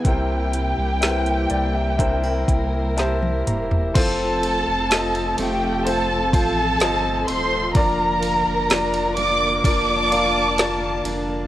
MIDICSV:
0, 0, Header, 1, 7, 480
1, 0, Start_track
1, 0, Tempo, 972447
1, 23, Time_signature, 4, 2, 24, 8
1, 2423, Tempo, 943396
1, 5762, End_track
2, 0, Start_track
2, 0, Title_t, "Violin section"
2, 0, Program_c, 0, 48
2, 35, Note_on_c, 0, 79, 82
2, 1474, Note_off_c, 0, 79, 0
2, 1963, Note_on_c, 0, 69, 79
2, 1965, Note_on_c, 0, 81, 95
2, 2652, Note_off_c, 0, 69, 0
2, 2653, Note_off_c, 0, 81, 0
2, 2681, Note_on_c, 0, 79, 85
2, 2683, Note_on_c, 0, 67, 64
2, 2915, Note_off_c, 0, 79, 0
2, 2915, Note_on_c, 0, 81, 96
2, 2916, Note_off_c, 0, 67, 0
2, 2917, Note_on_c, 0, 69, 74
2, 3150, Note_off_c, 0, 81, 0
2, 3153, Note_off_c, 0, 69, 0
2, 3156, Note_on_c, 0, 81, 108
2, 3159, Note_on_c, 0, 69, 92
2, 3612, Note_off_c, 0, 81, 0
2, 3613, Note_off_c, 0, 69, 0
2, 3636, Note_on_c, 0, 84, 99
2, 3638, Note_on_c, 0, 72, 79
2, 3857, Note_off_c, 0, 84, 0
2, 3858, Note_off_c, 0, 72, 0
2, 3877, Note_on_c, 0, 82, 102
2, 3881, Note_on_c, 0, 70, 84
2, 4576, Note_off_c, 0, 82, 0
2, 4578, Note_off_c, 0, 70, 0
2, 4597, Note_on_c, 0, 86, 117
2, 4600, Note_on_c, 0, 74, 82
2, 4818, Note_off_c, 0, 86, 0
2, 4820, Note_off_c, 0, 74, 0
2, 4832, Note_on_c, 0, 86, 115
2, 4835, Note_on_c, 0, 74, 86
2, 5526, Note_off_c, 0, 86, 0
2, 5528, Note_off_c, 0, 74, 0
2, 5762, End_track
3, 0, Start_track
3, 0, Title_t, "Grand piano"
3, 0, Program_c, 1, 0
3, 0, Control_c, 1, 64, 127
3, 22, Note_on_c, 1, 64, 66
3, 25, Note_on_c, 1, 48, 55
3, 26, Note_on_c, 1, 70, 58
3, 28, Control_c, 1, 64, 0
3, 29, Note_on_c, 1, 72, 63
3, 116, Control_c, 1, 64, 127
3, 477, Note_off_c, 1, 64, 0
3, 479, Note_off_c, 1, 70, 0
3, 481, Note_off_c, 1, 72, 0
3, 499, Note_on_c, 1, 64, 73
3, 503, Note_on_c, 1, 70, 65
3, 507, Note_on_c, 1, 71, 59
3, 537, Note_off_c, 1, 71, 0
3, 540, Note_on_c, 1, 72, 74
3, 723, Note_off_c, 1, 48, 0
3, 743, Note_on_c, 1, 74, 68
3, 854, Note_off_c, 1, 74, 0
3, 863, Note_on_c, 1, 76, 67
3, 957, Note_off_c, 1, 64, 0
3, 959, Note_off_c, 1, 70, 0
3, 975, Note_off_c, 1, 76, 0
3, 977, Note_off_c, 1, 72, 0
3, 980, Note_on_c, 1, 64, 82
3, 985, Note_on_c, 1, 70, 75
3, 985, Note_on_c, 1, 76, 71
3, 987, Note_on_c, 1, 72, 86
3, 1209, Note_off_c, 1, 76, 0
3, 1224, Note_on_c, 1, 79, 66
3, 1442, Note_off_c, 1, 64, 0
3, 1445, Note_off_c, 1, 70, 0
3, 1446, Note_off_c, 1, 72, 0
3, 1451, Note_off_c, 1, 79, 0
3, 1466, Note_on_c, 1, 64, 86
3, 1469, Note_on_c, 1, 70, 69
3, 1471, Note_on_c, 1, 81, 72
3, 1474, Note_on_c, 1, 72, 96
3, 1695, Note_off_c, 1, 81, 0
3, 1711, Note_on_c, 1, 82, 68
3, 1925, Note_off_c, 1, 64, 0
3, 1927, Note_off_c, 1, 70, 0
3, 1929, Note_off_c, 1, 72, 0
3, 1933, Note_off_c, 1, 82, 0
3, 1946, Note_on_c, 1, 60, 92
3, 1950, Note_on_c, 1, 65, 86
3, 1952, Note_on_c, 1, 69, 82
3, 1955, Note_on_c, 1, 72, 93
3, 1956, Control_c, 1, 64, 0
3, 2029, Control_c, 1, 64, 127
3, 2398, Note_off_c, 1, 60, 0
3, 2400, Note_off_c, 1, 65, 0
3, 2401, Note_off_c, 1, 69, 0
3, 2402, Note_off_c, 1, 72, 0
3, 2418, Note_on_c, 1, 60, 75
3, 2422, Note_on_c, 1, 65, 61
3, 2424, Note_on_c, 1, 69, 68
3, 2426, Note_on_c, 1, 75, 79
3, 2881, Note_off_c, 1, 60, 0
3, 2883, Note_off_c, 1, 65, 0
3, 2884, Note_off_c, 1, 69, 0
3, 2885, Note_off_c, 1, 75, 0
3, 2904, Note_on_c, 1, 60, 72
3, 2906, Note_on_c, 1, 65, 62
3, 2909, Note_on_c, 1, 69, 65
3, 2912, Note_on_c, 1, 72, 80
3, 3135, Note_off_c, 1, 60, 0
3, 3136, Note_off_c, 1, 65, 0
3, 3137, Note_off_c, 1, 69, 0
3, 3139, Note_off_c, 1, 72, 0
3, 3148, Note_on_c, 1, 60, 71
3, 3149, Note_on_c, 1, 65, 62
3, 3151, Note_on_c, 1, 69, 59
3, 3155, Note_on_c, 1, 72, 70
3, 3376, Note_off_c, 1, 60, 0
3, 3377, Note_off_c, 1, 65, 0
3, 3378, Note_off_c, 1, 69, 0
3, 3380, Note_off_c, 1, 72, 0
3, 3389, Note_on_c, 1, 60, 72
3, 3392, Note_on_c, 1, 65, 71
3, 3395, Note_on_c, 1, 69, 68
3, 3397, Note_on_c, 1, 75, 82
3, 3846, Note_off_c, 1, 60, 0
3, 3847, Note_off_c, 1, 65, 0
3, 3848, Note_off_c, 1, 69, 0
3, 3850, Note_off_c, 1, 75, 0
3, 3869, Note_on_c, 1, 62, 97
3, 3872, Note_on_c, 1, 65, 83
3, 3875, Control_c, 1, 64, 0
3, 3875, Note_on_c, 1, 70, 84
3, 3877, Note_on_c, 1, 74, 107
3, 3971, Control_c, 1, 64, 127
3, 4328, Note_off_c, 1, 62, 0
3, 4330, Note_off_c, 1, 65, 0
3, 4331, Note_off_c, 1, 70, 0
3, 4332, Note_off_c, 1, 74, 0
3, 4349, Note_on_c, 1, 62, 78
3, 4353, Note_on_c, 1, 65, 72
3, 4356, Note_on_c, 1, 70, 72
3, 4358, Note_on_c, 1, 74, 82
3, 4808, Note_off_c, 1, 62, 0
3, 4810, Note_off_c, 1, 65, 0
3, 4811, Note_off_c, 1, 70, 0
3, 4812, Note_off_c, 1, 74, 0
3, 4828, Note_on_c, 1, 62, 75
3, 4831, Note_on_c, 1, 65, 73
3, 4835, Note_on_c, 1, 70, 69
3, 4837, Note_on_c, 1, 74, 80
3, 5058, Note_off_c, 1, 62, 0
3, 5059, Note_off_c, 1, 65, 0
3, 5061, Note_off_c, 1, 70, 0
3, 5062, Note_off_c, 1, 74, 0
3, 5068, Note_on_c, 1, 62, 71
3, 5071, Note_on_c, 1, 65, 65
3, 5073, Note_on_c, 1, 70, 61
3, 5076, Note_on_c, 1, 77, 71
3, 5296, Note_off_c, 1, 62, 0
3, 5297, Note_off_c, 1, 65, 0
3, 5299, Note_off_c, 1, 70, 0
3, 5300, Note_off_c, 1, 77, 0
3, 5305, Note_on_c, 1, 62, 81
3, 5309, Note_on_c, 1, 65, 73
3, 5311, Note_on_c, 1, 70, 73
3, 5314, Note_on_c, 1, 74, 93
3, 5758, Note_off_c, 1, 62, 0
3, 5759, Note_off_c, 1, 65, 0
3, 5761, Note_off_c, 1, 70, 0
3, 5762, Note_off_c, 1, 74, 0
3, 5762, End_track
4, 0, Start_track
4, 0, Title_t, "Steel-string acoustic guitar"
4, 0, Program_c, 2, 25
4, 0, Note_on_c, 2, 59, 49
4, 0, Note_on_c, 2, 64, 50
4, 0, Note_on_c, 2, 68, 60
4, 26, Note_on_c, 2, 48, 80
4, 72, Note_off_c, 2, 59, 0
4, 75, Note_off_c, 2, 68, 0
4, 503, Note_off_c, 2, 64, 0
4, 503, Note_on_c, 2, 58, 59
4, 505, Note_on_c, 2, 64, 53
4, 508, Note_on_c, 2, 67, 65
4, 982, Note_off_c, 2, 64, 0
4, 984, Note_on_c, 2, 62, 52
4, 1103, Note_off_c, 2, 62, 0
4, 1103, Note_on_c, 2, 64, 53
4, 1464, Note_off_c, 2, 58, 0
4, 1468, Note_off_c, 2, 64, 0
4, 1470, Note_off_c, 2, 67, 0
4, 1470, Note_on_c, 2, 58, 55
4, 1473, Note_on_c, 2, 64, 54
4, 1476, Note_on_c, 2, 67, 62
4, 1706, Note_off_c, 2, 58, 0
4, 1712, Note_on_c, 2, 58, 53
4, 1951, Note_off_c, 2, 48, 0
4, 1953, Note_on_c, 2, 41, 93
4, 1998, Note_off_c, 2, 58, 0
4, 2000, Note_off_c, 2, 64, 0
4, 2001, Note_off_c, 2, 67, 0
4, 2424, Note_on_c, 2, 60, 59
4, 2664, Note_off_c, 2, 60, 0
4, 2667, Note_on_c, 2, 57, 63
4, 2670, Note_on_c, 2, 60, 55
4, 2674, Note_on_c, 2, 65, 61
4, 2903, Note_off_c, 2, 57, 0
4, 2909, Note_on_c, 2, 57, 54
4, 3148, Note_off_c, 2, 65, 0
4, 3150, Note_on_c, 2, 65, 70
4, 3625, Note_off_c, 2, 60, 0
4, 3631, Note_on_c, 2, 60, 57
4, 3871, Note_off_c, 2, 41, 0
4, 3871, Note_on_c, 2, 53, 84
4, 3919, Note_off_c, 2, 57, 0
4, 3919, Note_off_c, 2, 60, 0
4, 4350, Note_on_c, 2, 62, 64
4, 4592, Note_on_c, 2, 58, 65
4, 4593, Note_off_c, 2, 62, 0
4, 4595, Note_on_c, 2, 62, 60
4, 4596, Note_off_c, 2, 65, 0
4, 4598, Note_on_c, 2, 65, 61
4, 4828, Note_off_c, 2, 58, 0
4, 4830, Note_on_c, 2, 58, 58
4, 5065, Note_off_c, 2, 65, 0
4, 5071, Note_on_c, 2, 65, 74
4, 5545, Note_off_c, 2, 62, 0
4, 5547, Note_on_c, 2, 62, 63
4, 5762, Note_off_c, 2, 53, 0
4, 5762, Note_off_c, 2, 58, 0
4, 5762, Note_off_c, 2, 62, 0
4, 5762, Note_off_c, 2, 65, 0
4, 5762, End_track
5, 0, Start_track
5, 0, Title_t, "String section"
5, 0, Program_c, 3, 48
5, 0, Note_on_c, 3, 64, 65
5, 23, Note_on_c, 3, 67, 77
5, 24, Note_on_c, 3, 55, 62
5, 24, Note_on_c, 3, 58, 66
5, 25, Note_on_c, 3, 48, 67
5, 973, Note_off_c, 3, 67, 0
5, 986, Note_on_c, 3, 70, 88
5, 1930, Note_off_c, 3, 64, 0
5, 1931, Note_off_c, 3, 55, 0
5, 1931, Note_off_c, 3, 58, 0
5, 1932, Note_off_c, 3, 48, 0
5, 1942, Note_off_c, 3, 70, 0
5, 1948, Note_on_c, 3, 57, 70
5, 1948, Note_on_c, 3, 69, 83
5, 1950, Note_on_c, 3, 48, 85
5, 1950, Note_on_c, 3, 53, 70
5, 1950, Note_on_c, 3, 65, 68
5, 3849, Note_off_c, 3, 69, 0
5, 3850, Note_off_c, 3, 48, 0
5, 3850, Note_off_c, 3, 57, 0
5, 3868, Note_on_c, 3, 50, 74
5, 3870, Note_on_c, 3, 58, 75
5, 3870, Note_on_c, 3, 70, 88
5, 4824, Note_off_c, 3, 70, 0
5, 4832, Note_on_c, 3, 81, 99
5, 5762, Note_off_c, 3, 50, 0
5, 5762, Note_off_c, 3, 53, 0
5, 5762, Note_off_c, 3, 58, 0
5, 5762, Note_off_c, 3, 65, 0
5, 5762, Note_off_c, 3, 81, 0
5, 5762, End_track
6, 0, Start_track
6, 0, Title_t, "Sub bass"
6, 0, Program_c, 4, 38
6, 24, Note_on_c, 4, 36, 95
6, 363, Note_off_c, 4, 36, 0
6, 386, Note_on_c, 4, 36, 94
6, 724, Note_off_c, 4, 36, 0
6, 743, Note_on_c, 4, 36, 93
6, 1205, Note_off_c, 4, 36, 0
6, 1224, Note_on_c, 4, 36, 95
6, 1691, Note_off_c, 4, 36, 0
6, 1711, Note_on_c, 4, 28, 87
6, 1933, Note_off_c, 4, 28, 0
6, 1951, Note_on_c, 4, 29, 100
6, 2286, Note_off_c, 4, 29, 0
6, 2305, Note_on_c, 4, 29, 107
6, 2646, Note_off_c, 4, 29, 0
6, 2665, Note_on_c, 4, 29, 109
6, 3149, Note_on_c, 4, 33, 88
6, 3157, Note_off_c, 4, 29, 0
6, 3372, Note_off_c, 4, 33, 0
6, 3388, Note_on_c, 4, 31, 95
6, 3612, Note_off_c, 4, 31, 0
6, 3632, Note_on_c, 4, 27, 96
6, 3854, Note_off_c, 4, 27, 0
6, 3869, Note_on_c, 4, 29, 109
6, 4211, Note_off_c, 4, 29, 0
6, 4232, Note_on_c, 4, 29, 109
6, 4344, Note_off_c, 4, 29, 0
6, 4350, Note_on_c, 4, 29, 100
6, 4812, Note_off_c, 4, 29, 0
6, 4832, Note_on_c, 4, 29, 104
6, 5526, Note_off_c, 4, 29, 0
6, 5544, Note_on_c, 4, 29, 103
6, 5762, Note_off_c, 4, 29, 0
6, 5762, End_track
7, 0, Start_track
7, 0, Title_t, "Drums"
7, 24, Note_on_c, 9, 36, 89
7, 24, Note_on_c, 9, 42, 77
7, 73, Note_off_c, 9, 36, 0
7, 73, Note_off_c, 9, 42, 0
7, 264, Note_on_c, 9, 42, 69
7, 313, Note_off_c, 9, 42, 0
7, 504, Note_on_c, 9, 42, 77
7, 508, Note_on_c, 9, 38, 103
7, 553, Note_off_c, 9, 42, 0
7, 557, Note_off_c, 9, 38, 0
7, 623, Note_on_c, 9, 42, 44
7, 673, Note_off_c, 9, 42, 0
7, 740, Note_on_c, 9, 42, 69
7, 789, Note_off_c, 9, 42, 0
7, 983, Note_on_c, 9, 36, 74
7, 986, Note_on_c, 9, 42, 83
7, 1032, Note_off_c, 9, 36, 0
7, 1036, Note_off_c, 9, 42, 0
7, 1225, Note_on_c, 9, 36, 82
7, 1227, Note_on_c, 9, 42, 80
7, 1274, Note_off_c, 9, 36, 0
7, 1277, Note_off_c, 9, 42, 0
7, 1469, Note_on_c, 9, 42, 72
7, 1476, Note_on_c, 9, 38, 52
7, 1518, Note_off_c, 9, 42, 0
7, 1526, Note_off_c, 9, 38, 0
7, 1591, Note_on_c, 9, 48, 61
7, 1641, Note_off_c, 9, 48, 0
7, 1712, Note_on_c, 9, 45, 71
7, 1713, Note_on_c, 9, 42, 74
7, 1761, Note_off_c, 9, 45, 0
7, 1763, Note_off_c, 9, 42, 0
7, 1831, Note_on_c, 9, 43, 86
7, 1881, Note_off_c, 9, 43, 0
7, 1951, Note_on_c, 9, 36, 98
7, 1951, Note_on_c, 9, 49, 96
7, 1951, Note_on_c, 9, 51, 81
7, 2000, Note_off_c, 9, 36, 0
7, 2000, Note_off_c, 9, 49, 0
7, 2000, Note_off_c, 9, 51, 0
7, 2187, Note_on_c, 9, 51, 64
7, 2237, Note_off_c, 9, 51, 0
7, 2423, Note_on_c, 9, 51, 73
7, 2428, Note_on_c, 9, 38, 113
7, 2474, Note_off_c, 9, 51, 0
7, 2479, Note_off_c, 9, 38, 0
7, 2546, Note_on_c, 9, 51, 46
7, 2597, Note_off_c, 9, 51, 0
7, 2663, Note_on_c, 9, 51, 66
7, 2714, Note_off_c, 9, 51, 0
7, 2911, Note_on_c, 9, 51, 77
7, 2962, Note_off_c, 9, 51, 0
7, 3149, Note_on_c, 9, 36, 98
7, 3151, Note_on_c, 9, 51, 75
7, 3200, Note_off_c, 9, 36, 0
7, 3202, Note_off_c, 9, 51, 0
7, 3387, Note_on_c, 9, 51, 69
7, 3393, Note_on_c, 9, 38, 127
7, 3438, Note_off_c, 9, 51, 0
7, 3444, Note_off_c, 9, 38, 0
7, 3630, Note_on_c, 9, 51, 62
7, 3681, Note_off_c, 9, 51, 0
7, 3868, Note_on_c, 9, 51, 79
7, 3869, Note_on_c, 9, 36, 114
7, 3919, Note_off_c, 9, 51, 0
7, 3920, Note_off_c, 9, 36, 0
7, 4110, Note_on_c, 9, 51, 66
7, 4161, Note_off_c, 9, 51, 0
7, 4352, Note_on_c, 9, 51, 77
7, 4357, Note_on_c, 9, 38, 126
7, 4403, Note_off_c, 9, 51, 0
7, 4408, Note_off_c, 9, 38, 0
7, 4472, Note_on_c, 9, 51, 44
7, 4523, Note_off_c, 9, 51, 0
7, 4590, Note_on_c, 9, 51, 62
7, 4641, Note_off_c, 9, 51, 0
7, 4832, Note_on_c, 9, 36, 86
7, 4835, Note_on_c, 9, 51, 88
7, 4883, Note_off_c, 9, 36, 0
7, 4886, Note_off_c, 9, 51, 0
7, 5075, Note_on_c, 9, 51, 72
7, 5126, Note_off_c, 9, 51, 0
7, 5309, Note_on_c, 9, 51, 68
7, 5315, Note_on_c, 9, 38, 113
7, 5360, Note_off_c, 9, 51, 0
7, 5366, Note_off_c, 9, 38, 0
7, 5548, Note_on_c, 9, 51, 69
7, 5599, Note_off_c, 9, 51, 0
7, 5762, End_track
0, 0, End_of_file